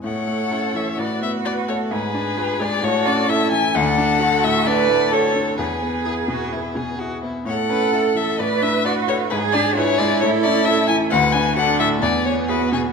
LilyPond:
<<
  \new Staff \with { instrumentName = "Violin" } { \time 4/4 \key a \major \tempo 4 = 130 fis''4. e''8 d''8 e''8 d''8 cis''8 | b'4. d''8 cis''8 d''8 e''8 gis''8 | fis''4. e''8 d''4 cis''4 | b'2. r4 |
fis''4. e''8 d''8 e''8 d''8 cis''8 | b'8 d''8 cis''8 d''8 cis''8 d''8 e''8 gis''8 | fis''8 gis''8 fis''8 e''8 d''8 cis''8 b'8 gis'8 | }
  \new Staff \with { instrumentName = "Violin" } { \time 4/4 \key a \major cis''2 b'4 b'8 a'8 | gis'2 a'4 a'4 | a'2 a'2 | gis'4 gis'8 fis'8 e'8 gis'8 fis'8 e'8 |
cis''8 b'8 a'8 a'8 b'2 | gis'4 gis'4 a'2 | b'4 a'4 gis'4 fis'4 | }
  \new Staff \with { instrumentName = "Cello" } { \time 4/4 \key a \major a'2 fis'2 | gis'2 fis'4 e'4 | d'4 fis'4 b'4 a'4 | gis'2.~ gis'8 r8 |
a'2 b'4 fis'4 | gis'4 e'2. | fis'4 d'4 b2 | }
  \new Staff \with { instrumentName = "Grand piano" } { \time 4/4 \key a \major a,8 a8 <cis' e'>8 e8 a,8 b8 <fis' b'>8 a8 | gis,8 d'8 <eis' b'>8 gis8 a,8 cis'8 <e' a'>8 e8 | d,8 d'8 <fis' a'>8 a,8 d'8 a,8 <fis' a'>8 d'8 | e,8 b8 <e' gis'>8 b,8 b8 b,8 <e' gis'>8 b8 |
a,8 cis'8 <e' a'>8 e8 a,8 d'8 <fis' b'>8 a8 | gis,8 d'8 <eis' b'>8 gis8 a,8 cis'8 <e' a'>8 e8 | d,8 d'8 <fis' a'>8 a,8 e,8 b8 <e' gis'>8 b,8 | }
>>